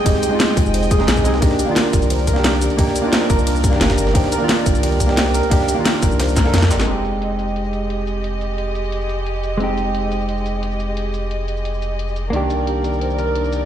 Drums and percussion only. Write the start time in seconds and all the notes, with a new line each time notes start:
0.06 kick, closed hi-hat, ride
0.15 snare
0.23 closed hi-hat, ride, shaker
0.40 snare, closed hi-hat, ride
0.49 snare
0.57 kick, closed hi-hat, open hi-hat, ride, shaker
0.66 shaker
0.74 closed hi-hat, ride
0.83 closed hi-hat, shaker
0.91 kick, closed hi-hat, ride, shaker
1.00 snare
1.08 snare, closed hi-hat, ride
1.17 kick, shaker
1.25 closed hi-hat, ride, shaker
1.34 snare
1.42 kick, closed hi-hat, ride
1.51 snare
1.59 closed hi-hat, ride, shaker
1.76 snare, closed hi-hat, ride
1.93 kick, closed hi-hat, ride, shaker
2.02 closed hi-hat, shaker
2.10 closed hi-hat, ride
2.19 closed hi-hat
2.27 kick, closed hi-hat, ride, shaker
2.36 snare
2.44 snare, closed hi-hat, ride
2.53 snare
2.61 snare, closed hi-hat, ride, shaker
2.70 closed hi-hat
2.78 kick, closed hi-hat, ride
2.87 snare
2.96 closed hi-hat, ride, shaker
3.13 snare, closed hi-hat, ride
3.22 snare
3.30 kick, closed hi-hat, open hi-hat, ride, shaker
3.39 shaker
3.47 closed hi-hat, ride
3.56 closed hi-hat, shaker
3.64 kick, closed hi-hat, ride, shaker
3.73 snare
3.81 snare, closed hi-hat, ride
3.90 kick, snare, closed hi-hat, shaker
3.98 closed hi-hat, ride, shaker
4.07 snare
4.15 kick, closed hi-hat, ride
4.24 snare
4.32 closed hi-hat, ride, shaker
4.49 snare, closed hi-hat, ride
4.66 kick, closed hi-hat, ride, shaker
4.75 closed hi-hat, shaker
4.83 closed hi-hat, ride
4.92 closed hi-hat
5.00 kick, closed hi-hat, ride, shaker
5.09 snare
5.17 snare, closed hi-hat, ride
5.26 snare
5.34 snare, closed hi-hat, ride, shaker
5.43 closed hi-hat
5.51 kick, closed hi-hat, ride
5.60 snare
5.68 closed hi-hat, ride, shaker
5.85 snare, closed hi-hat, ride
5.94 snare
6.02 kick, closed hi-hat, open hi-hat, ride, shaker
6.11 shaker
6.20 snare, closed hi-hat, ride
6.29 closed hi-hat, shaker
6.37 kick, snare, closed hi-hat, ride, shaker
6.46 snare
6.54 snare, closed hi-hat, ride
6.58 snare, closed hi-hat
6.62 kick, snare, closed hi-hat, shaker
6.71 snare, closed hi-hat, ride, shaker
6.80 snare, closed hi-hat
6.88 closed hi-hat
7.05 closed hi-hat, shaker
7.22 closed hi-hat
7.39 closed hi-hat, shaker
7.48 shaker
7.56 closed hi-hat
7.65 shaker
7.73 closed hi-hat, shaker
7.90 closed hi-hat
7.99 shaker
8.07 closed hi-hat, shaker
8.24 closed hi-hat
8.41 closed hi-hat, shaker
8.58 closed hi-hat
8.75 closed hi-hat, shaker
8.84 shaker
8.92 closed hi-hat
9.01 shaker
9.09 closed hi-hat, shaker
9.26 closed hi-hat
9.35 shaker
9.44 closed hi-hat, shaker
9.60 closed hi-hat
9.78 closed hi-hat, shaker
9.95 closed hi-hat
10.12 closed hi-hat, shaker
10.21 shaker
10.29 closed hi-hat
10.38 shaker
10.46 closed hi-hat, shaker
10.63 closed hi-hat
10.72 shaker
10.80 closed hi-hat, shaker
10.97 closed hi-hat
11.14 closed hi-hat, shaker
11.31 closed hi-hat
11.48 closed hi-hat, shaker
11.57 shaker
11.65 closed hi-hat
11.74 shaker
11.82 closed hi-hat, shaker
11.99 closed hi-hat
12.08 shaker
12.16 closed hi-hat, shaker
12.33 closed hi-hat
12.50 closed hi-hat, shaker
12.67 closed hi-hat
12.84 closed hi-hat, shaker
12.93 shaker
13.01 closed hi-hat
13.10 shaker
13.18 closed hi-hat, shaker
13.35 closed hi-hat
13.44 shaker
13.53 closed hi-hat, shaker